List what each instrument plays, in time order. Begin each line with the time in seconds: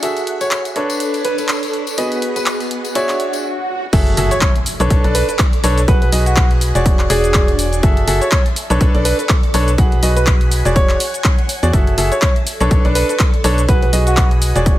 Already playing: string machine E5
0.03 grand piano F#4 G#4 A4 E5, string machine F#5, closed hi-hat, tambourine
0.17 closed hi-hat, tambourine
0.27 closed hi-hat
0.41 grand piano C#5, closed hi-hat, tambourine
0.51 grand piano C#5, clap, closed hi-hat, tambourine
0.65 closed hi-hat, tambourine
0.76 grand piano D4 A4 B4 C#5, string machine D4 A4 C#5 B5, closed hi-hat
0.90 closed hi-hat, tambourine
1.00 closed hi-hat, tambourine
1.14 closed hi-hat, tambourine
1.25 grand piano B4, closed hi-hat
1.38 grand piano B4, closed hi-hat, tambourine
1.49 clap, closed hi-hat, tambourine
1.63 closed hi-hat, tambourine
1.73 closed hi-hat
1.87 closed hi-hat, tambourine
1.98 grand piano B3 F#4 G#4 B4 D#5, string machine B3 G#4 F#5 B5, closed hi-hat, tambourine
2.12 closed hi-hat, tambourine
2.22 closed hi-hat
2.36 grand piano B4, closed hi-hat, tambourine
2.46 clap, closed hi-hat, tambourine
2.60 closed hi-hat, tambourine
2.71 closed hi-hat
2.85 closed hi-hat, tambourine
2.95 string machine D4 E5 C#6, grand piano F#4 G#4 C#5 D5 E5, closed hi-hat, tambourine, swell
3.09 clap, closed hi-hat, tambourine
3.20 closed hi-hat
3.33 closed hi-hat, tambourine
3.93 fm bass F#1, grand piano F#4 G#4 A4 E5, string machine E5 G#5 A5, kick, closed hi-hat, crash, impact, shaker
4.07 closed hi-hat
4.17 fm bass F#1, grand piano F#4 G#4 A4 E5, open hi-hat, shaker
4.31 grand piano C#5, closed hi-hat, shaker
4.41 grand piano C#5, kick, clap, closed hi-hat, shaker
4.56 closed hi-hat
4.66 string machine A4 D5 C#6, open hi-hat, shaker
4.80 fm bass B1, grand piano D4 A4 B4 C#5, closed hi-hat, shaker
4.90 fm bass B1, grand piano D4 A4 B4 C#5, kick, closed hi-hat, shaker
5.04 fm bass B1, grand piano D4 A4 B4 D5, closed hi-hat
5.15 grand piano B4, open hi-hat, shaker
5.29 grand piano B4, closed hi-hat, shaker
5.39 kick, clap, closed hi-hat, shaker
5.53 closed hi-hat
5.64 fm bass B1, grand piano D4 A4 B4 C#5, open hi-hat, shaker
5.78 closed hi-hat, shaker
5.88 fm bass B1, grand piano F#4 G#4 B4 F#5, string machine F#5 G#5 B5, kick, closed hi-hat, shaker
6.02 grand piano B4, closed hi-hat
6.12 fm bass B1, grand piano F#4 G#4 B4 D#5, open hi-hat, shaker
6.26 grand piano F#4, closed hi-hat, shaker
6.36 grand piano F#4, kick, clap, closed hi-hat, shaker
6.51 closed hi-hat
6.61 open hi-hat, shaker
6.75 fm bass E1, grand piano F#4 G#4 C#5 D5, closed hi-hat, shaker
6.86 string machine D4 C#6, kick, closed hi-hat, shaker
6.99 clap, closed hi-hat
7.10 fm bass E1, grand piano F#4 G#4 C#5 D5, open hi-hat, shaker
7.24 closed hi-hat, shaker
7.34 kick, clap, closed hi-hat, shaker
7.48 closed hi-hat
7.59 open hi-hat, shaker
7.73 closed hi-hat, shaker
7.83 fm bass F#1, grand piano F#4 G#4 A4 E5, string machine E5 A5, kick, closed hi-hat, shaker
7.97 closed hi-hat
8.07 fm bass F#1, grand piano F#4 G#4 A4 E5, open hi-hat, shaker
8.21 grand piano C#5, closed hi-hat, shaker
8.32 grand piano C#5, kick, clap, closed hi-hat, shaker
8.46 closed hi-hat
8.56 string machine A4 D5 C#6, open hi-hat, shaker
8.70 fm bass B1, grand piano D4 A4 B4 C#5, closed hi-hat, shaker
8.81 fm bass B1, grand piano A4 B4 C#5, kick, closed hi-hat, shaker
8.95 fm bass B1, grand piano D4 A4 B4 D5, closed hi-hat
9.05 grand piano B4, open hi-hat, shaker
9.19 grand piano B4, closed hi-hat, shaker
9.29 kick, clap, closed hi-hat, shaker
9.43 closed hi-hat
9.54 fm bass B1, grand piano D4 A4 B4 C#5, open hi-hat, shaker
9.68 closed hi-hat, shaker
9.78 fm bass B1, grand piano F#4 G#4 B4 F#5, string machine F#5 G#5 B5, kick, closed hi-hat, shaker
9.92 closed hi-hat
10.03 fm bass B1, grand piano F#4 G#4 B4 D#5, open hi-hat, shaker
10.17 grand piano B4, closed hi-hat, shaker
10.27 kick, clap, closed hi-hat, shaker
10.41 closed hi-hat
10.51 open hi-hat, shaker
10.65 fm bass E1, grand piano F#4 G#4 C#5 D5, closed hi-hat, shaker
10.76 string machine C#5 C#6, grand piano C#5, kick, closed hi-hat, shaker
10.89 clap, closed hi-hat
11.00 open hi-hat, shaker
11.14 closed hi-hat, shaker
11.24 kick, clap, closed hi-hat, shaker
11.39 closed hi-hat
11.49 open hi-hat, shaker
11.63 fm bass E2, grand piano F#4 G#4 C#5 D5, closed hi-hat, shaker
11.73 fm bass F#1, grand piano F#4 G#4 A4 E5, string machine E5 A5, kick, closed hi-hat, shaker
11.87 closed hi-hat
11.98 fm bass F#1, grand piano F#4 G#4 A4 E5, open hi-hat, shaker
12.12 grand piano C#5, closed hi-hat, shaker
12.22 kick, clap, closed hi-hat, shaker
12.36 closed hi-hat
12.46 string machine A4 D5 C#6, open hi-hat, shaker
12.60 fm bass B1, grand piano D4 A4 B4 C#5, closed hi-hat, shaker
12.71 fm bass B1, grand piano D4 A4 B4, kick, closed hi-hat, shaker
12.85 fm bass B1, grand piano D4 A4 B4 D5, closed hi-hat
12.95 grand piano B4, open hi-hat, shaker
13.09 grand piano B4, closed hi-hat, shaker
13.19 kick, clap, closed hi-hat, shaker
13.34 closed hi-hat
13.44 fm bass B1, grand piano D4 A4 B4 C#5, open hi-hat, shaker
13.58 closed hi-hat, shaker
13.68 fm bass B1, grand piano F#4 G#4 B4 F#5, string machine F#5 G#5 B5, kick, closed hi-hat, shaker
13.82 grand piano B4, closed hi-hat
13.93 fm bass B1, grand piano F#4 G#4 B4 D#5, open hi-hat, shaker
14.07 grand piano F#4, closed hi-hat, shaker
14.17 kick, clap, closed hi-hat, shaker
14.31 closed hi-hat
14.42 open hi-hat, shaker
14.56 fm bass E1, grand piano F#4 G#4 C#5 D5, closed hi-hat, shaker
14.66 string machine D4 C#6, kick, closed hi-hat, shaker